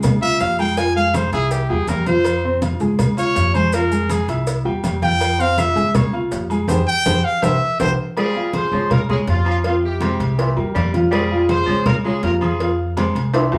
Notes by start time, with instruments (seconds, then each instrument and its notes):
Already playing: upright bass C#2, upright piano G#3 G#4 G#5
0.03 cowbell, high conga, low conga, low agogo, maracas
0.22 upright piano F4 F5 F6, trumpet E5, high conga, low agogo
0.40 upright bass F2, trumpet F5, cowbell, high conga, low timbale, maracas
0.58 upright piano G#3 G#4 G#5, trumpet G5, low agogo, maracas
0.77 upright piano F3 F4 F5, trumpet G#5, cowbell, high conga, low agogo, maracas
0.96 upright piano G#3 G#4 G#5, trumpet F5, high conga
1.14 trumpet C5, cowbell, high conga, low timbale, low agogo, maracas
1.32 upright bass C2, upright piano E4 E5 E6, trumpet G#4, cowbell, high conga, low agogo, maracas
1.51 trumpet G4, cowbell, high conga, maracas
1.70 upright bass E2, upright piano G3 G4 G5, trumpet G#4, high conga, low agogo
1.87 upright bass F2, trumpet A#4, cowbell, high conga, low timbale, low agogo, maracas
2.06 upright piano F3 F4 F5, trumpet C5, cowbell, high conga, maracas
2.25 cowbell, high conga, low agogo, maracas
2.44 upright piano C4 C5 C6, high conga
2.62 upright piano F3 F4 F5, cowbell, high conga, low timbale, low agogo, maracas
2.80 upright bass C#2, upright piano G#3 G#4 G#5, maracas
2.99 cowbell, high conga, low conga, low agogo, maracas
3.17 upright piano F4 F5 F6, trumpet C#5, high conga, low agogo, maracas
3.36 upright bass F2, cowbell, high conga, low timbale, maracas
3.54 upright piano G#3 G#4 G#5, trumpet C5, high conga, low agogo, maracas
3.72 upright piano F3 F4 F5, trumpet A#4, cowbell, low agogo, maracas
3.91 upright piano G#3 G#4 G#5, high conga, maracas
4.09 trumpet G#4, cowbell, high conga, low timbale, low agogo, maracas
4.28 upright bass C2, upright piano E4 E5 E6, cowbell, high conga, low agogo, maracas
4.46 cowbell, high conga, maracas
4.65 upright bass E2, upright piano G3 G4 G5, high conga, low agogo
4.84 upright bass F2, cowbell, high conga, low timbale, low agogo, maracas
5.02 upright piano F3 F4 F5, trumpet G5, cowbell, high conga, maracas
5.21 cowbell, low agogo, maracas
5.38 upright piano C4 C5 C6, trumpet F5, high conga, maracas
5.57 upright piano F3 F4 F5, trumpet E5, cowbell, high conga, low timbale, low agogo, maracas
5.76 upright bass C#2, upright piano G#3 G#4 G#5, high conga, maracas
5.95 trumpet C#5, cowbell, high conga, low conga, low agogo, maracas
6.13 upright piano F4 F5 F6, high conga, low agogo
6.31 upright bass F2, cowbell, high conga, low timbale, maracas
6.50 upright piano G#3 G#4 G#5, low agogo, maracas
6.68 upright bass F2, upright piano G4 G#4 C5, cowbell, high conga, high timbale, maracas
6.88 trumpet G5
7.06 upright bass F2, upright piano G4 G#4 C5, cowbell, high conga, high timbale, maracas
7.25 trumpet F5
7.42 upright bass C2, upright piano G4 A#4 C5, trumpet E5, cowbell, high conga, high timbale, maracas
7.79 upright bass C2, upright piano G4 A#4 C5, trumpet C5, cowbell, high conga, high timbale, maracas
8.17 baritone saxophone G3, upright piano G#3 G#4 C5, horn section F4 G#4, cowbell, high conga, low agogo
8.35 upright piano F3 F4 F5, high conga
8.53 horn section G#4 C5, cowbell, high conga, low timbale, low agogo
8.72 upright bass C#2, baritone saxophone F3, upright piano G#3 G#4 C#5, high conga
8.90 horn section F4 A#4, cowbell, high conga, low conga, low agogo
9.09 upright piano G#3 G#4 C#5, baritone saxophone G#3, horn section F4 G#4, high conga, low conga, low agogo
9.27 upright bass F2, upright piano F3 F4 F5, horn section C#4 F4, cowbell, high conga, low timbale
9.45 baritone saxophone F3, horn section C#4 F4, low agogo
9.64 upright piano F3 F4 F5, horn section C4 F4, cowbell, high conga, low agogo
9.83 horn section E4 G4, high conga
10.01 baritone saxophone C3, upright piano G#3 G4 C5, cowbell, high conga, low timbale, low agogo
10.20 upright bass C2, cowbell, high conga, low agogo
10.38 baritone saxophone A#2, upright piano E3 E4 E5, cowbell, high conga
10.57 upright bass E2, upright piano G3 G4 A#4, high conga, low agogo
10.75 upright bass F2, baritone saxophone G3, cowbell, high conga, low timbale, low agogo
10.93 upright piano F3 F4 F5, cowbell, high conga
11.11 baritone saxophone G3, upright piano G#3 G#4 C5, horn section F4 G#4, cowbell, low agogo
11.31 upright piano F3 F4 F5, high conga
11.49 horn section G#4 C5, cowbell, high conga, low timbale, low agogo
11.66 upright bass C#2, baritone saxophone F3, upright piano G#3 G#4 C#5, high conga
11.86 horn section F4 A#4, cowbell, high conga, low conga, low agogo
12.05 baritone saxophone G#3, upright piano G#3 G#4 C#5, horn section F4 G#4, high conga, low agogo
12.23 upright bass F2, upright piano F3 F4 F5, horn section F4 A#4, cowbell, high conga, low timbale
12.41 baritone saxophone F3, horn section F4 G#4, high conga, low agogo
12.59 upright piano F3 F4 F5, cowbell, high conga, low agogo
12.79 high conga
12.97 baritone saxophone C3, upright piano G#3 G#4 C5, cowbell, high conga, low timbale, low agogo
13.15 upright bass C2, cowbell, high conga, low agogo
13.34 baritone saxophone A#2, upright piano E3 E4 E5, cowbell, high conga, high timbale
13.52 upright bass E2, upright piano G3 G4 A#4, high conga, high timbale, low agogo